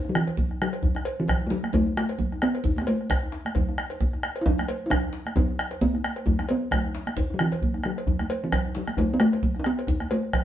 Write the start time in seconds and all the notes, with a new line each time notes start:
0.05 djembe slap, djembe tone
0.09 F#3
0.15 E3, bombo rim, djembe slap
0.27 cowbell, djembe slap
0.37 bombo low, high conga, low conga
0.49 bombo rim, djembe tone
0.62 F#3, bombo rim
0.73 bombo rim, cowbell
0.83 bombo low, djembe slap, djembe bass, low conga
0.95 bombo rim, djembe slap, djembe tone
1.05 bombo rim, cowbell
1.20 E3
1.28 bombo rim, bombo low, cowbell, high conga, low conga
1.41 bombo rim, djembe tone
1.47 F#3 A3, djembe slap
1.63 bombo rim, high conga
1.73 A3, bombo rim, bombo low, cowbell, high conga, low conga, djembe bass
1.86 djembe slap, djembe tone
1.97 A3, bombo rim, djembe slap
2.09 cowbell, djembe slap
2.19 bombo low, high conga, low conga
2.32 bombo rim, djembe tone
2.42 B3, bombo rim
2.55 bombo rim, cowbell
2.64 bombo low, low conga, djembe bass
2.76 bombo rim, djembe slap, high conga, djembe tone
2.81 B3
2.87 A3, cowbell
3.01 bombo rim
3.10 bombo rim, bombo low, cowbell, high conga, low conga
3.23 djembe tone
3.32 djembe slap
3.45 bombo rim, high conga
3.55 bombo low, cowbell, djembe slap, low conga, djembe bass
3.69 djembe slap, djembe tone
3.78 bombo rim, high conga
3.90 cowbell, djembe slap
4.01 bombo rim, bombo low, high conga, low conga
4.13 bombo rim, high conga, djembe tone
4.23 bombo rim, high conga
4.36 cowbell
4.41 E4
4.46 D4, bombo low, djembe slap, low conga, djembe bass
4.58 bombo rim, djembe slap, djembe tone, high conga
4.68 bombo rim, cowbell
4.86 E4
4.90 D4, bombo rim, bombo low, cowbell, high conga, low conga
5.03 bombo rim, djembe tone
5.13 djembe slap
5.26 bombo rim, high conga
5.36 B3, bombo rim, bombo low, cowbell, high conga, low conga, djembe bass
5.48 djembe tone
5.58 bombo rim, djembe slap
5.71 cowbell, djembe slap
5.81 B3, bombo low, high conga, low conga
5.94 bombo rim, djembe tone
6.04 bombo rim
6.16 bombo rim, cowbell
6.26 A3, bombo low, djembe slap, low conga, djembe bass
6.39 bombo rim, djembe slap, high conga, djembe tone
6.49 B3, bombo rim, cowbell
6.71 A3, bombo rim, bombo low, cowbell, high conga, low conga
6.84 bombo rim, djembe tone
6.95 djembe slap
7.07 bombo rim, high conga
7.17 bombo rim, bombo low, cowbell, high conga, djembe bass, low conga
7.30 F#3, djembe slap, djembe tone
7.39 E3, bombo rim, djembe slap
7.52 cowbell, djembe slap
7.62 bombo low, high conga, low conga
7.74 bombo rim, djembe tone
7.84 F#3, bombo rim
7.97 bombo rim, cowbell
8.06 bombo low, djembe slap, djembe bass, low conga
8.19 bombo rim, djembe slap, djembe tone, high conga
8.30 bombo rim, cowbell
8.44 E3
8.52 bombo rim, bombo low, cowbell, high conga, low conga
8.65 bombo rim, djembe tone
8.75 F#3, djembe slap
8.88 bombo rim, high conga
8.97 A3, bombo rim, bombo low, cowbell, high conga, djembe bass, low conga
9.10 B3, djembe slap, djembe tone
9.20 A3, bombo rim
9.32 cowbell, djembe slap
9.42 bombo low, high conga, low conga
9.55 bombo rim, djembe tone
9.59 D4
9.64 B3, bombo rim
9.78 bombo rim, cowbell
9.87 bombo rim, bombo low, djembe bass, low conga
10.00 bombo rim, djembe slap, high conga, djembe tone
10.10 A3, bombo rim, cowbell, djembe slap
10.23 bombo rim, high conga
10.33 bombo rim, bombo low, cowbell, low conga